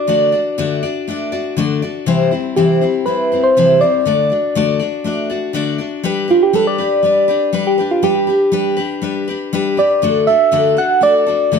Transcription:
Already playing: soft synth lead D5
0.07 steel-string acoustic guitar D3 A3 D4 F#4 D5
0.32 steel-string acoustic guitar D4 F#4 D5
0.58 steel-string acoustic guitar D3 A3 D4 F#4 D5
0.83 steel-string acoustic guitar D4 F#4 D5
1.08 steel-string acoustic guitar A3 D4 F#4 D5
1.32 steel-string acoustic guitar D4 F#4 D5
1.57 steel-string acoustic guitar D3 A3 D4 F#4 D5
1.82 steel-string acoustic guitar D4 F#4 D5
2.06 steel-string acoustic guitar C3 E3 G3 C4 E4 C5
2.31 steel-string acoustic guitar G3 C4 E4 C5
2.56 steel-string acoustic guitar C3 E3 G3 C4 E4 C5, soft synth lead G4
2.81 steel-string acoustic guitar G3 C4 E4 C5
3.06 steel-string acoustic guitar G3 C4 E4 C5, soft synth lead B4
3.32 steel-string acoustic guitar G3 C4 E4 C5
3.44 soft synth lead C5
3.57 steel-string acoustic guitar C3 E3 G3 C4 E4 C5
3.81 steel-string acoustic guitar G3 C4 E4 C5, soft synth lead D5
4.06 steel-string acoustic guitar D3 A3 D4 F#4 D5
4.30 steel-string acoustic guitar D4 F#4 D5
4.55 steel-string acoustic guitar D3 A3 D4 F#4 D5
4.79 steel-string acoustic guitar D4 F#4 D5
5.04 steel-string acoustic guitar A3 D4 F#4 D5
5.30 steel-string acoustic guitar D4 F#4 D5
5.53 steel-string acoustic guitar D3 A3 D4 F#4 D5
5.78 steel-string acoustic guitar D4 F#4 D5
6.03 steel-string acoustic guitar G3 D4 G4 B4
6.28 steel-string acoustic guitar D4 G4 B4, soft synth lead F4
6.43 soft synth lead G4
6.53 steel-string acoustic guitar G3 D4 G4 B4, soft synth lead A4
6.67 soft synth lead D5
6.78 steel-string acoustic guitar D4 G4 B4
7.03 steel-string acoustic guitar G3 D4 G4 B4
7.28 steel-string acoustic guitar D4 G4 B4
7.53 steel-string acoustic guitar G3 D4 G4 B4
7.67 soft synth lead G4
7.78 steel-string acoustic guitar D4 G4 B4
7.91 soft synth lead F4
8.02 steel-string acoustic guitar G3 D4 G4 B4, soft synth lead G4
8.27 steel-string acoustic guitar D4 G4 B4
8.52 steel-string acoustic guitar G3 D4 G4 B4
8.77 steel-string acoustic guitar D4 G4 B4
9.02 steel-string acoustic guitar G3 D4 G4 B4
9.28 steel-string acoustic guitar D4 G4 B4
9.53 steel-string acoustic guitar G3 D4 G4 B4
9.77 steel-string acoustic guitar D4 G4 B4, soft synth lead D5
10.02 steel-string acoustic guitar D3 A3 D4 F#4 A4
10.27 steel-string acoustic guitar D4 F#4 A4, soft synth lead E5
10.52 steel-string acoustic guitar D3 A3 D4 F#4 A4
10.77 steel-string acoustic guitar D4 F#4 A4, soft synth lead F#5
11.01 steel-string acoustic guitar A3 D4 F#4 A4, soft synth lead D5
11.27 steel-string acoustic guitar D4 F#4 A4
11.52 steel-string acoustic guitar D3 A3 D4 F#4 A4

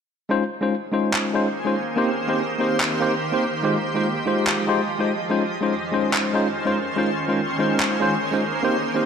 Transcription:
0.29 ambient pad D#3 A#3 C#4 G#4 C5, tine electric piano G#3 C#4 D#4 F4 C5
0.61 tine electric piano G#3 C#4 D#4 F4 C5
0.92 tine electric piano G#3 C#4 D#4 F4 C5
1.13 clap
1.33 tine electric piano G#3 C#4 D#4 F4 C5
1.65 tine electric piano G#3 C#4 D#4 F4 C5
1.76 ambient pad G4
1.96 tine electric piano A#3 C4 D#4 G4 C5
2.28 tine electric piano A#3 C4 D#4 G4 C5
2.59 tine electric piano A#3 C4 D#4 G4 C5
2.80 clap
3.00 tine electric piano A#3 C4 D#4 G4 C5
3.32 tine electric piano A#3 C4 D#4 G4 C5
3.63 ambient pad F3 G#3 D#5, tine electric piano G#3 D#4 F4 G4 C5
3.95 tine electric piano G#3 D#4 F4 G4 C5
4.25 tine electric piano G#3 D#4 F4 G4 C5
4.47 clap
4.67 tine electric piano G#3 D#4 F4 G4 C5
4.99 tine electric piano G#3 D#4 F4 G4 C5
5.29 ambient pad F2 D#3 C#4 F4 C5, tine electric piano G#3 C#4 D#4 F4 C5
5.61 tine electric piano G#3 C#4 D#4 F4 C5
5.92 tine electric piano G#3 C#4 D#4 F4 C5
6.13 clap
6.34 tine electric piano G#3 C#4 D#4 F4 C5
6.65 tine electric piano G#3 C#4 D#4 F4 C5
6.96 tine electric piano G#3 C#4 D#4 F4 C5, ambient pad A#3 G#4
7.28 tine electric piano G#3 C#4 D#4 F4 C5
7.58 tine electric piano G#3 C#4 D#4 F4 C5
7.80 clap
8.00 tine electric piano G#3 C#4 D#4 F4 C5
8.32 tine electric piano G#3 C#4 D#4 F4 C5
8.43 ambient pad G4
8.63 tine electric piano A#3 C4 D#4 G4 C5
8.94 tine electric piano A#3 C4 D#4 G4 C5

